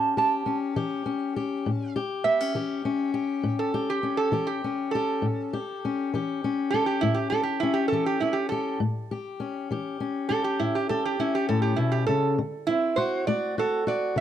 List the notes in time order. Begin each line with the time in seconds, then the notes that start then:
Already playing: A2 C#4 G4 A5
0.17 G4 A5
0.46 C#4
0.76 E3 G4
1.06 C#4
1.36 G4
1.66 A2
1.96 G4
2.24 B3 E5
2.41 C#4
2.55 E3 G4
2.85 C#4
3.14 G4
3.43 A2
3.59 A4
3.74 G4
3.90 G4
4.03 C#4
4.17 A4
4.32 E3 G4
4.47 G4
4.64 C#4
4.91 G4 A4
5.22 A2
5.53 G4
5.85 C#4
6.14 E3 G4
6.44 C#4
6.70 G4 A4
6.86 G4
7.01 A2 E4
7.14 G4
7.30 G4 A4
7.43 G4
7.60 C#4 E4
7.74 G4
7.88 A4
7.92 E3 G4
8.06 G4
8.20 C#4 E4
8.33 G4
8.49 G4 A4
8.80 A2
9.11 G4
9.40 C#4
9.71 E3 G4
10.00 C#4
10.29 G4 A4
10.44 G4
10.59 A2 E4
10.75 G4
10.89 G4 A4
11.05 G4
11.19 C#4 E4
11.35 G4
11.49 A2 A4
11.62 G4
11.76 B2 E4
11.92 G4
12.07 C#3 A4
12.38 D3
12.67 C4 E4
12.96 F#4 C5
13.27 A3 F#4 D5
13.58 F#4 A4
13.87 F#4 D5
14.16 D3